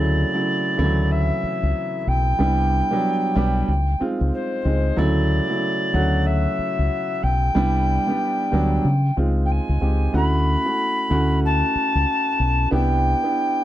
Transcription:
0.00 0.23 D2 medium
0.00 0.26 C#3 medium
0.00 0.26 F#3 medium
0.00 0.26 A3 medium
0.00 0.27 E4 medium
0.00 1.12 D5 medium
0.34 0.74 C#3 medium
0.34 0.73 F#3 medium
0.34 0.74 A3 soft
0.34 0.74 E4 medium
0.77 1.30 D2 medium
0.77 1.95 C#3 medium
0.77 0.85 E3 medium
0.77 1.95 A3 medium
0.77 1.96 E4 medium
0.84 1.98 F#3 medium
1.11 2.09 E5 medium
1.43 muted fingered electric bass stroke soft
1.63 1.72 C#2 medium
2.07 2.33 B1 medium
2.07 4.00 G5 loud
2.39 2.81 C2 medium
2.39 2.84 G3 medium
2.39 2.84 B3 medium
2.39 2.84 D4 medium
2.39 2.85 E4 medium
2.91 3.32 F#3 medium
2.91 3.31 G3 medium
2.91 3.31 B3 medium
2.91 3.32 D4 medium
3.36 3.62 B1 medium
3.36 3.68 G3 medium
3.36 3.68 B3 medium
3.36 3.68 D4 medium
3.36 3.68 G4 medium
3.68 3.94 C#2 medium
4.00 4.59 G#3 medium
4.00 4.59 C4 medium
4.00 4.59 D#4 medium
4.00 4.59 F4 medium
4.00 muted fingered electric bass stroke soft
4.21 4.30 C#2 medium
4.34 4.99 C5 medium
4.65 4.91 C#2 medium
4.65 4.94 G#3 medium
4.65 4.94 C4 medium
4.65 4.94 D#4 medium
4.65 4.95 G#4 medium
4.97 5.39 D2 medium
4.97 5.42 C#3 medium
4.97 5.42 F#3 medium
4.97 5.42 A3 medium
4.97 5.43 E4 medium
4.97 6.27 D5 medium
5.49 5.89 C#3 medium
5.49 5.89 F#3 medium
5.49 5.89 A3 medium
5.49 5.90 E4 medium
5.94 6.45 D2 medium
5.94 7.12 C#3 medium
5.94 7.11 F#3 medium
5.94 7.11 A3 medium
5.94 7.12 F#4 medium
6.26 7.24 E5 medium
6.59 muted fingered electric bass stroke soft
6.79 6.88 C#2 medium
7.22 7.49 B1 medium
7.22 9.16 G5 loud
7.55 7.97 C2 medium
7.55 8.00 G3 medium
7.55 8.00 B3 medium
7.55 8.01 D4 medium
7.55 8.01 E4 medium
8.07 8.47 G3 medium
8.07 8.47 B3 medium
8.07 8.48 D4 medium
8.07 8.48 G4 medium
8.52 8.78 D2 medium
8.52 8.85 F#3 medium
8.52 8.84 G3 medium
8.52 8.84 B3 medium
8.52 8.84 D4 medium
8.85 9.10 C#3 medium
9.17 9.59 C#2 medium
9.17 9.75 G#3 medium
9.17 9.75 C4 medium
9.17 9.75 D#4 medium
9.17 9.76 F4 medium
9.45 9.52 G5 medium
9.51 10.14 G#5 medium
9.69 9.78 C#2 medium
9.81 10.07 C#2 medium
9.81 10.10 G#3 medium
9.81 10.10 C4 medium
9.81 10.10 D#4 soft
9.81 10.11 G4 medium
10.13 10.55 D2 medium
10.13 10.58 A3 medium
10.13 10.58 C#4 medium
10.13 10.59 E4 medium
10.13 10.59 F#4 medium
10.13 11.39 B5 loud
10.65 11.05 A3 medium
10.65 11.05 C#4 medium
10.65 11.06 E4 medium
10.65 11.06 F#4 medium
11.10 11.62 D2 medium
11.10 12.27 A3 medium
11.10 12.27 C#4 medium
11.10 12.28 E4 medium
11.10 12.28 F#4 medium
11.45 12.68 A5 loud
11.75 muted fingered electric bass stroke soft
11.95 12.04 C#2 medium
12.40 12.65 B1 medium
12.71 13.13 C2 medium
12.71 13.16 B3 medium
12.71 13.16 D4 medium
12.71 13.17 E4 medium
12.71 13.17 G4 medium
12.71 13.64 G5 loud
13.23 13.63 B3 medium
13.23 13.64 D4 medium
13.23 13.64 E4 medium
13.23 13.64 G4 medium

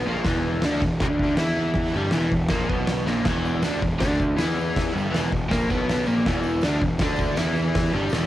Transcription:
0.06 0.24 A#1 loud
0.06 0.25 A#2 medium
0.06 0.26 A#3 loud
0.24 0.61 E1 loud
0.24 0.62 E2 medium
0.24 0.63 E3 medium
0.24 kick medium
0.24 snare medium
0.24 open hi-hat medium
0.62 0.81 D2 loud
0.62 0.82 D3 medium
0.62 0.82 D4 medium
0.62 snare loud
0.62 open hi-hat soft
0.81 0.99 E1 medium
0.81 0.98 E2 medium
0.81 kick medium
1.00 1.36 D2 loud
1.00 1.37 D3 loud
1.00 1.39 D4 loud
1.00 kick loud
1.00 snare loud
1.00 open hi-hat medium
1.19 kick medium
1.37 1.90 E2 medium
1.37 1.94 E3 medium
1.37 1.95 E4 loud
1.37 snare loud
1.37 open hi-hat medium
1.74 kick loud
1.74 snare loud
1.94 2.11 G1 medium
1.94 2.12 G2 medium
1.94 2.13 G3 medium
2.11 2.30 E1 medium
2.11 2.29 E2 medium
2.11 2.32 E3 loud
2.11 snare loud
2.11 open hi-hat soft
2.31 2.49 E1 medium
2.31 2.47 E2 medium
2.31 kick medium
2.48 2.68 A#1 loud
2.48 2.69 A#2 medium
2.48 2.70 A#3 loud
2.48 kick loud
2.48 snare loud
2.48 open hi-hat medium
2.69 3.05 B1 medium
2.69 3.06 B2 loud
2.69 3.07 B3 loud
2.69 kick medium
2.87 snare loud
2.87 open hi-hat medium
3.07 3.25 A#1 loud
3.07 3.25 A#2 loud
3.07 3.26 A#3 loud
3.07 snare medium
3.23 3.61 E1 loud
3.23 3.62 E2 medium
3.23 3.63 E3 medium
3.23 kick medium
3.23 snare loud
3.23 crash medium
3.45 tambourine medium
3.62 3.80 D2 medium
3.62 3.82 D3 medium
3.62 3.82 D4 medium
3.62 snare medium
3.62 open hi-hat medium
3.62 tambourine medium
3.82 3.99 E1 medium
3.82 3.97 E2 medium
3.82 kick medium
3.82 tambourine soft
3.99 4.36 D2 loud
3.99 4.36 D3 medium
3.99 4.37 D4 loud
3.99 kick loud
3.99 snare loud
3.99 open hi-hat medium
3.99 tambourine medium
4.20 kick medium
4.20 tambourine medium
4.37 4.91 E2 loud
4.37 4.93 E3 loud
4.37 4.93 E4 loud
4.37 snare loud
4.37 open hi-hat medium
4.37 tambourine medium
4.59 tambourine medium
4.77 kick loud
4.77 snare loud
4.77 open hi-hat medium
4.93 5.12 G1 medium
4.93 5.11 G2 medium
4.93 5.11 G3 medium
4.98 tambourine medium
5.11 5.31 E1 loud
5.11 5.30 E2 medium
5.11 5.31 E3 medium
5.11 snare loud
5.11 open hi-hat medium
5.16 tambourine medium
5.32 5.50 E1 medium
5.32 5.47 E2 medium
5.32 kick medium
5.32 tambourine soft
5.49 5.68 A#1 medium
5.49 5.68 A#2 medium
5.49 5.69 A#3 loud
5.49 kick loud
5.49 snare loud
5.49 open hi-hat medium
5.49 tambourine medium
5.70 6.05 B1 medium
5.70 6.06 B2 loud
5.70 6.07 B3 loud
5.70 kick medium
5.70 tambourine medium
5.89 snare loud
5.89 open hi-hat medium
5.89 tambourine medium
6.06 6.25 A#1 loud
6.06 6.25 A#2 loud
6.06 6.25 A#3 loud
6.06 tambourine medium
6.26 6.61 E1 loud
6.26 6.63 E2 loud
6.26 6.63 E3 loud
6.26 kick loud
6.26 snare medium
6.26 open hi-hat soft
6.43 tambourine medium
6.61 6.80 D2 medium
6.61 6.81 D3 medium
6.61 6.82 D4 medium
6.61 snare loud
6.61 open hi-hat soft
6.61 tambourine medium
6.81 6.99 E1 medium
6.81 6.96 E2 medium
6.81 kick medium
6.81 tambourine soft
6.99 7.35 D2 medium
6.99 7.36 D3 medium
6.99 7.38 D4 loud
6.99 kick loud
6.99 snare loud
6.99 open hi-hat medium
6.99 tambourine medium
7.16 kick medium
7.16 tambourine medium
7.36 7.89 E2 medium
7.36 7.92 E3 medium
7.36 7.93 E4 loud
7.36 snare loud
7.36 open hi-hat medium
7.36 tambourine loud
7.55 tambourine medium
7.75 kick loud
7.75 snare loud
7.75 open hi-hat medium
7.75 tambourine soft
7.93 8.10 G1 medium
7.93 8.11 G2 medium
7.93 8.11 G3 loud
8.09 8.27 E1 medium
8.09 8.27 E2 medium
8.09 8.27 E3 medium
8.09 snare medium
8.09 open hi-hat medium
8.09 tambourine loud

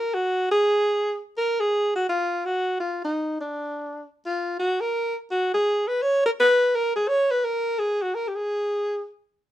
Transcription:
0.00 0.16 A#4 medium
0.14 0.50 F#4 medium
0.51 1.18 G#4 medium
1.37 1.62 A#4 medium
1.60 1.94 G#4 medium
1.96 2.06 F#4 medium
2.09 2.47 F4 medium
2.45 2.79 F#4 medium
2.80 3.00 F4 medium
3.05 3.36 D#4 medium
3.41 4.06 D4 medium
4.26 4.57 F4 medium
4.59 4.82 F#4 medium
4.80 5.16 A#4 medium
5.31 5.51 F#4 medium
5.54 5.89 G#4 medium
5.88 6.04 B4 medium
6.02 6.24 C#5 loud
6.26 6.31 A#4 medium
6.40 6.77 B4 loud
6.75 6.95 A#4 medium
6.96 7.10 G#4 medium
7.08 7.32 C#5 medium
7.31 7.46 B4 medium
7.45 7.80 A#4 medium
7.79 8.04 G#4 medium
8.02 8.16 F#4 medium
8.15 8.29 A#4 medium
8.28 8.37 G4 medium
8.35 9.07 G#4 medium

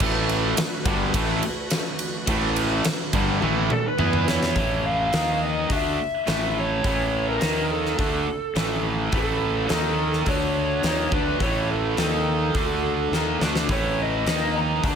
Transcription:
0.00 0.53 A1 medium
0.00 0.57 A2 medium
0.00 0.57 E3 medium
0.00 3.96 A3 medium
0.00 0.57 A3 loud
0.00 4.53 F#4 medium
0.00 3.96 B4 medium
0.00 kick loud
0.00 crash loud
0.29 ride medium
0.57 muted distorted electric guitar stroke medium
0.57 muted overdriven electric guitar stroke medium
0.57 muted fingered electric bass stroke soft
0.57 snare loud
0.57 ride loud
0.85 1.12 G1 medium
0.85 1.13 G2 loud
0.85 1.14 D3 loud
0.85 1.14 G3 loud
0.85 kick loud
0.85 ride medium
1.14 1.41 A1 loud
1.14 1.42 A2 medium
1.14 1.42 E3 loud
1.14 1.43 A3 medium
1.14 kick medium
1.14 ride loud
1.43 ride medium
1.70 snare loud
1.70 ride loud
1.99 ride medium
2.26 2.81 A1 medium
2.26 2.84 A2 loud
2.26 2.84 E3 medium
2.26 2.84 A3 medium
2.26 kick loud
2.26 ride loud
2.56 ride medium
2.84 muted overdriven electric guitar stroke medium
2.84 muted distorted electric guitar stroke medium
2.84 muted fingered electric bass stroke soft
2.84 snare loud
2.84 ride loud
3.13 3.40 G1 medium
3.13 3.41 G2 medium
3.13 3.41 D3 loud
3.13 3.41 G3 loud
3.13 kick loud
3.13 ride medium
3.41 3.69 A1 loud
3.41 3.69 A2 medium
3.41 3.70 E3 medium
3.41 3.70 A3 loud
3.41 high tom medium
3.70 3.86 A4 medium
3.70 mid tom medium
3.86 4.29 B4 medium
3.98 4.52 E2 loud
3.98 4.55 E3 medium
3.98 4.56 E3 medium
3.98 4.55 B3 medium
3.98 4.56 B3 medium
3.98 4.55 E4 medium
3.98 mid tom medium
4.13 mid tom medium
4.28 4.87 C#5 loud
4.28 snare loud
4.43 snare loud
4.55 5.09 A1 medium
4.55 5.12 A2 medium
4.55 5.13 E3 medium
4.55 5.13 A3 medium
4.55 kick loud
4.55 open hi-hat soft
4.86 5.43 F5 loud
5.13 5.67 D#2 loud
5.13 5.69 D#3 medium
5.13 5.70 A#3 medium
5.13 5.70 D#4 medium
5.13 snare loud
5.13 open hi-hat medium
5.43 5.72 D#5 medium
5.70 5.97 D2 medium
5.70 5.98 D3 medium
5.70 5.98 A3 loud
5.70 5.99 D4 loud
5.70 6.60 E5 loud
5.70 kick medium
5.70 open hi-hat soft
6.26 6.81 A1 loud
6.26 6.83 A2 medium
6.26 6.83 E3 medium
6.26 6.84 A3 medium
6.26 snare medium
6.26 open hi-hat soft
6.59 7.28 C#5 medium
6.84 7.38 A1 medium
6.84 7.40 A2 medium
6.84 7.41 E3 medium
6.84 7.41 A3 medium
6.84 kick medium
6.84 open hi-hat soft
7.29 7.72 A#4 medium
7.40 7.96 D#2 medium
7.40 7.97 D#3 medium
7.40 7.98 A#3 medium
7.40 7.98 D#4 medium
7.40 snare loud
7.40 open hi-hat medium
7.71 8.81 A4 medium
7.86 snare soft
7.97 8.25 D2 medium
7.97 8.26 D3 medium
7.97 8.26 A3 loud
7.97 8.27 D4 loud
7.97 kick loud
7.97 open hi-hat soft
8.55 9.09 A1 medium
8.55 9.11 A2 medium
8.55 9.12 E3 medium
8.55 9.12 A3 loud
8.55 snare loud
8.55 open hi-hat soft
9.12 9.66 A1 medium
9.12 9.69 A2 medium
9.12 9.71 E3 medium
9.12 9.71 A3 loud
9.12 10.25 A4 medium
9.12 kick loud
9.12 open hi-hat soft
9.69 10.24 D#2 loud
9.69 10.26 D#3 medium
9.69 10.27 A#3 medium
9.69 10.27 D#4 medium
9.69 snare loud
9.69 open hi-hat soft
10.13 snare soft
10.26 10.80 D2 medium
10.26 10.83 D3 medium
10.26 10.83 A3 medium
10.26 10.84 D4 loud
10.26 11.10 C#5 loud
10.26 kick medium
10.26 open hi-hat soft
10.83 11.11 D#2 loud
10.83 11.12 D#3 medium
10.83 11.12 A#3 medium
10.83 11.13 D#4 loud
10.83 snare loud
10.83 open hi-hat soft
11.12 11.39 D2 medium
11.12 11.40 D3 medium
11.12 11.41 A3 medium
11.12 11.41 D4 loud
11.12 11.42 B4 medium
11.12 kick loud
11.40 11.94 A1 medium
11.40 11.97 A2 medium
11.40 11.98 E3 medium
11.40 11.98 A3 medium
11.40 11.69 C#5 medium
11.40 kick loud
11.40 open hi-hat medium
11.70 13.37 A4 medium
11.97 12.51 D#2 medium
11.97 12.54 D#3 medium
11.97 12.55 A#3 medium
11.97 12.55 D#4 medium
11.97 snare loud
11.97 open hi-hat soft
12.55 13.08 D2 medium
12.55 13.12 D3 medium
12.55 13.12 A3 medium
12.55 13.12 D4 medium
12.55 kick loud
12.55 open hi-hat soft
13.12 13.39 D#2 medium
13.12 13.40 D#3 medium
13.12 13.41 A#3 medium
13.12 13.41 D#4 medium
13.12 snare medium
13.41 13.68 D2 medium
13.41 13.69 D3 medium
13.41 13.69 A3 medium
13.41 13.69 D4 loud
13.41 snare medium
13.55 snare medium
13.69 14.22 A1 medium
13.69 14.26 A2 medium
13.69 14.26 E3 medium
13.69 14.26 A3 loud
13.69 14.00 C#5 medium
13.69 kick loud
13.69 open hi-hat soft
14.02 14.59 D#5 medium
14.26 14.79 D#2 medium
14.26 14.83 D#3 medium
14.26 14.83 A#3 medium
14.26 14.83 D#4 loud
14.26 snare loud
14.26 open hi-hat soft
14.56 14.85 A#5 loud
14.84 14.95 D2 medium
14.84 14.95 D3 medium
14.84 14.95 A3 loud
14.84 14.95 D4 medium
14.84 14.95 A5 loud
14.84 kick loud
14.84 open hi-hat soft

